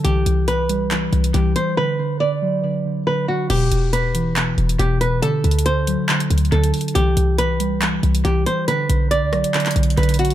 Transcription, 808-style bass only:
X:1
M:4/4
L:1/16
Q:1/4=139
K:Em
V:1 name="808-style bass" clef=bass
C,,2 C,,8 C,,2 C,,2 z2 | z16 | E,,,2 E,,,8 E,,,2 E,,,4 | z2 D,,4- D,, z3 D,,2 D,,2 z2 |
C,,2 C,,8 C,,2 C,,2 z2 | z2 B,,,3 D,, B,,, z3 B,,,2 B,,,4 |]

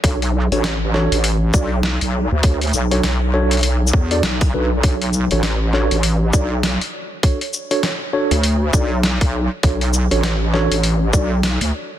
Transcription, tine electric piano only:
X:1
M:4/4
L:1/16
Q:"Swing 16ths" 1/4=100
K:Bm
V:1 name="Tine electric piano"
[DFAc] z2 [DFAc] z2 [DFAc] z3 [DFAd] z4 z | [DFAc] z2 [DFAc] z2 [DFAc] z4 [DFAd] z2 [DFAB] z | [DFAc] z2 [DFAc] z2 [DFAc] z3 [DFAd] z4 z | [DFAc] z2 [DFAc] z2 [DFAc] z3 [DFAd] z4 z |
[DFAc] z2 [DFAc] z2 [DFAc] z3 [DFAd] z4 z |]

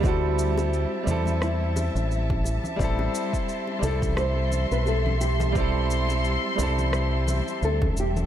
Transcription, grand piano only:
X:1
M:4/4
L:1/8
Q:"Swing 16ths" 1/4=87
K:Ador
V:1 name="Grand piano"
[G,CEA]3 [G,CEA]4- [G,CEA] | [G,CEA]3 [G,CEA]4- [G,CEA] | [G,CEA]3 [G,CEA]4- [G,CEA] |]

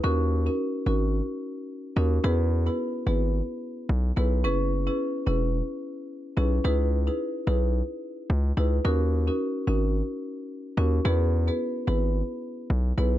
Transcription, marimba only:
X:1
M:4/4
L:1/16
Q:"Swing 16ths" 1/4=109
K:D#phr
V:1 name="Marimba"
[CDFA]2 z [CDFA] z2 [CDFA]2 z6 [CDFA]2 | [B,EGB]2 z [B,EGB] z2 [B,EGB]2 z6 [B,EGB]2 | [CEGB]2 z [CEGB] z2 [CEGB]2 z6 [CEGB]2 | [DEGB]2 z [DEGB] z2 [DEGB]2 z6 [DEGB]2 |
[CDFA]2 z [CDFA] z2 [CDFA]2 z6 [CDFA]2 | [B,EGB]2 z [B,EGB] z2 [B,EGB]2 z6 [B,EGB]2 |]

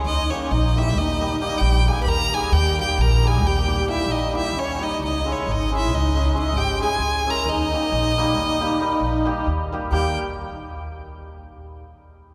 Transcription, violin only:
X:1
M:11/8
L:1/16
Q:1/4=134
K:none
V:1 name="Violin"
_e2 _d2 e2 _f2 e4 e2 g2 _a3/2 _c'/2 _b2 a2 | g2 g2 _b2 _a2 g4 _f2 _e2 f2 _d2 e2 | _e2 _d2 e2 _f2 e4 e2 g2 _a4 _b2 | _e16- e2 z4 |
g2 z16 z4 |]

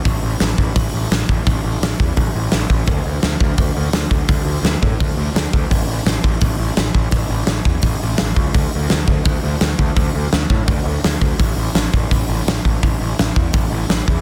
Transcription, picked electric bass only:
X:1
M:4/4
L:1/8
Q:1/4=169
K:Amix
V:1 name="Picked electric bass" clef=bass
A,,, A,,, A,,, A,,, A,,, A,,, A,,, A,,, | A,,, A,,, A,,, E,, A,,, A,,, A,,, A,,, | D,, D,, D,, D,, D,, D,, D,, D,, | D,, D,, D,, A,, D,, D,, D,, D,, |
A,,, A,,, A,,, A,,, A,,, A,,, A,,, A,,, | A,,, A,,, A,,, E,, A,,, A,,, A,,, C,, | D,, D,, D,, D,, D,, D,, D,, D,, | D,, D,, D,, A,, D,, D,, D,, D,, |
A,,, A,,, A,,, A,,, A,,, A,,, A,,, A,,, | A,,, A,,, A,,, E,, A,,, A,,, A,,, E,, |]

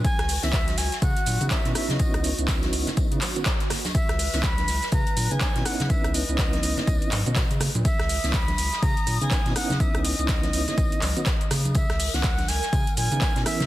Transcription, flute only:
X:1
M:4/4
L:1/16
Q:"Swing 16ths" 1/4=123
K:C#dor
V:1 name="Flute"
g3 e3 g2 f4 e2 e d- | d3 z12 z | e4 b4 a3 g3 f2 | e2 d12 z2 |
e4 b4 a3 g3 f2 | e2 d12 z2 | e3 f3 g4 g4 e2 |]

